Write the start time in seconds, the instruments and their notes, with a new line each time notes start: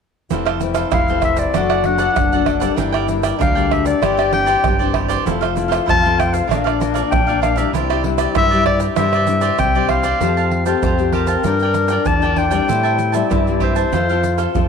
0.31 fingered electric bass F1, nylon-string guitar F2 E3 A3 C4, cavaquinho E4 A4 C5 F5, trombone E4, pandeiro, shaker, surdo
0.45 cavaquinho A4 C5 F5, pandeiro, tamborim, shaker
0.61 nylon-string guitar E3 A3 C4, muted cavaquinho stroke, pandeiro, shaker
0.74 cavaquinho A4 C5 F5, pandeiro, tamborim, shaker
0.92 fingered electric bass F1, nylon-string guitar C3, cavaquinho E4 A4 C5 F5, clarinet F5, pandeiro, tamborim, shaker, surdo
1.08 nylon-string guitar E3 A3 C4, cavaquinho A4 C5, pandeiro, shaker
1.22 clarinet E5, pandeiro, tamborim, shaker, surdo
1.37 clarinet D5, pandeiro, shaker
1.54 fingered electric bass F#1, nylon-string guitar F#2 F#3 A3 D4, cavaquinho D4 A4 D5 F#5, trombone F#4, pandeiro, tamborim, shaker, surdo
1.69 cavaquinho A4 D5 F#5, pandeiro, tamborim, shaker
1.84 nylon-string guitar F#3 A3 D4, clarinet F#5, muted cavaquinho stroke, pandeiro
1.98 cavaquinho A4 D5 F#5, pandeiro, shaker
2.16 fingered electric bass F#1, nylon-string guitar F#2, trombone D4, pandeiro, tamborim, shaker, surdo
2.32 nylon-string guitar F#3 A3 D4, cavaquinho A4 D5 F#5, pandeiro, shaker
2.46 cavaquinho D4 A4 D5 F#5, pandeiro, tamborim
2.60 nylon-string guitar G3 A#3 D4, cavaquinho A4 D5 F#5, pandeiro, shaker
2.76 fingered electric bass G1, nylon-string guitar G2, cavaquinho D4 A#4 D5 G5, trombone E4, pandeiro, shaker, surdo
2.92 cavaquinho A#4 D5 G5, pandeiro, tamborim, shaker
3.08 nylon-string guitar G3 A#3 D4, muted cavaquinho stroke, pandeiro, shaker
3.23 cavaquinho A#4 D5 G5, pandeiro, tamborim, shaker
3.39 fingered electric bass D2, nylon-string guitar D3, cavaquinho D4 A#4 D5 G5, trombone D4, clarinet F5, pandeiro, tamborim, shaker, surdo
3.55 nylon-string guitar G3 A#3 D4, cavaquinho A#4 D5 G5, pandeiro, shaker
3.71 clarinet E5, pandeiro, tamborim, surdo
3.86 clarinet D5, pandeiro, shaker
4.02 fingered electric bass G1, nylon-string guitar G2 E3 C4 D4, cavaquinho E4 G4 C5 D5, trombone G4, pandeiro, tamborim, shaker, surdo
4.17 cavaquinho G4 C5 D5, pandeiro, tamborim, shaker
4.32 nylon-string guitar E3 C4 D4, clarinet G5, muted cavaquinho stroke, pandeiro
4.46 cavaquinho G4 C5 D5, pandeiro, shaker
4.64 fingered electric bass G1, nylon-string guitar G2, pandeiro, tamborim, shaker, surdo
4.79 nylon-string guitar E3 C4 D4, cavaquinho G4 C5 D5, pandeiro, shaker
4.94 cavaquinho E4 G4 C5 D5, pandeiro, tamborim
5.08 cavaquinho G4 C5 D5, pandeiro, shaker
5.25 fingered electric bass F1, nylon-string guitar F3 A3 C4 E4, cavaquinho E4 A4 C5 F5, trombone F4, pandeiro, shaker, surdo
5.41 cavaquinho A4 C5 F5, pandeiro, tamborim, shaker
5.55 nylon-string guitar A3 C4 E4, muted cavaquinho stroke, pandeiro, shaker
5.68 cavaquinho A4 C5 F5, pandeiro, tamborim, shaker
5.86 fingered electric bass F2, nylon-string guitar C3, cavaquinho E4 A4 C5 F5, pandeiro, tamborim, shaker, surdo
5.90 clarinet A5
6.02 nylon-string guitar A3 C4, cavaquinho A4 C5 F5, pandeiro, shaker
6.19 clarinet G5, pandeiro, tamborim, shaker
6.34 clarinet F5, pandeiro, shaker
6.47 fingered electric bass A#1, nylon-string guitar A#2, cavaquinho D4 A#4 D5 F5, trombone D4
6.51 nylon-string guitar A#3 D4 F4, pandeiro, tamborim, shaker, surdo
6.64 cavaquinho A#4 D5 F5, pandeiro, tamborim, shaker
6.80 nylon-string guitar A#3 D4 F4, muted cavaquinho stroke, pandeiro, shaker
6.94 cavaquinho A#4 D5 F5, pandeiro, shaker
7.11 fingered electric bass A#1, nylon-string guitar F3, clarinet G5, pandeiro, tamborim, shaker, surdo
7.27 nylon-string guitar A#3 D4 F4, cavaquinho A#4 D5 F5, pandeiro, shaker
7.41 cavaquinho D4 A#4 D5 F5, clarinet F5, pandeiro, tamborim, shaker
7.56 nylon-string guitar G3 D4 E4, cavaquinho A#4 D5 F5, clarinet E5, pandeiro, shaker
7.73 fingered electric bass C2, nylon-string guitar C3, cavaquinho E4 G4 C5 D5, trombone E4, pandeiro, shaker, surdo
7.90 cavaquinho G4 C5 D5, pandeiro, tamborim, shaker
8.04 nylon-string guitar G3 D4 E4, muted cavaquinho stroke, pandeiro
8.18 cavaquinho G4 C5 D5, pandeiro, tamborim, shaker
8.35 fingered electric bass G2, nylon-string guitar G3, cavaquinho E4 G4 C5 D5, clarinet E5, pandeiro, tamborim, shaker, surdo
8.51 nylon-string guitar G3 D4 E4, cavaquinho G4 C5 D5, pandeiro, shaker
8.66 clarinet D5, pandeiro, tamborim, surdo
8.80 pandeiro, shaker
8.96 fingered electric bass G2, nylon-string guitar C3 G3 D4 E4, cavaquinho E4 G4 C5 D5, clarinet E5, pandeiro, tamborim, shaker, surdo
9.13 cavaquinho G4 C5 D5, pandeiro, tamborim, shaker
9.27 nylon-string guitar G3 D4 E4, muted cavaquinho stroke, pandeiro, shaker
9.41 cavaquinho G4 C5 D5, pandeiro, shaker
9.58 fingered electric bass C2, nylon-string guitar G3, trombone C4, clarinet G5, pandeiro, tamborim, shaker, surdo
9.75 nylon-string guitar G3 D4 E4, cavaquinho G4 C5 D5, pandeiro, shaker
9.89 cavaquinho E4 G4 C5 D5, clarinet F5, pandeiro, tamborim
10.04 cavaquinho G4 C5 D5, pandeiro, shaker
10.21 fingered electric bass F2, nylon-string guitar F3 A3 C4 G4, trombone C4, cavaquinho G4 C5 F5 A5, pandeiro, shaker, surdo
10.37 cavaquinho C5 F5 A5, pandeiro, shaker
10.51 muted cavaquinho stroke, pandeiro
10.66 nylon-string guitar A3 C4 G4, clarinet C5, cavaquinho C5 F5 A5, pandeiro, shaker
10.82 fingered electric bass F2, nylon-string guitar C3, cavaquinho G4 C5 F5 A5, pandeiro, shaker, surdo
10.98 nylon-string guitar A3 C4 G4, pandeiro, shaker
11.13 cavaquinho G4 C5 F5 A5, clarinet A#4, pandeiro
11.27 cavaquinho C5 F5 A5, pandeiro, shaker
11.44 fingered electric bass G2, nylon-string guitar G3 D4 F4 A#4, trombone D4, cavaquinho F4 A#4 D5 G5, pandeiro, shaker, surdo
11.59 cavaquinho G5, pandeiro, shaker
11.64 cavaquinho A#4 D5
11.74 muted cavaquinho stroke, pandeiro, shaker
11.88 nylon-string guitar D4 F4 A#4, cavaquinho A#4 D5 G5, pandeiro, shaker
12.06 fingered electric bass E2, nylon-string guitar D3, clarinet A5, pandeiro, shaker, surdo
12.22 nylon-string guitar D4 F4 A#4, cavaquinho A#4 D5 G5, pandeiro, shaker
12.36 cavaquinho F4 A#4 D5 G5, clarinet G5, pandeiro
12.51 nylon-string guitar G3 C4 E4, cavaquinho A#4 D5 G5, pandeiro, shaker
12.68 fingered electric bass A2, nylon-string guitar A2, trombone E4, cavaquinho G4 C5 E5 A5, pandeiro, shaker, surdo
12.83 cavaquinho C5 E5 A5, pandeiro, shaker
12.98 muted cavaquinho stroke, pandeiro, shaker
13.12 nylon-string guitar G3 C4 E4, cavaquinho C5 E5 A5, clarinet D5, pandeiro, shaker
13.30 fingered electric bass G2, nylon-string guitar E3, cavaquinho G4 C5 E5 A5, pandeiro, shaker, surdo
13.47 nylon-string guitar G3 C4 E4, pandeiro, shaker
13.60 cavaquinho G4 C5 E5 A5, clarinet C5, pandeiro, surdo
13.76 cavaquinho C5 E5 A5, pandeiro, shaker
13.93 fingered electric bass F2, nylon-string guitar F3 C4 F4 A4, cavaquinho F4 A4 C5 F5, trombone F4, pandeiro, shaker, surdo
14.09 nylon-string guitar C4 F4 A4, cavaquinho A4 C5 F5, pandeiro, shaker
14.23 muted cavaquinho stroke, pandeiro, shaker
14.38 cavaquinho A4 C5 F5, pandeiro, shaker
14.55 fingered electric bass F2, nylon-string guitar C3 C4 F4 A4, pandeiro, shaker, surdo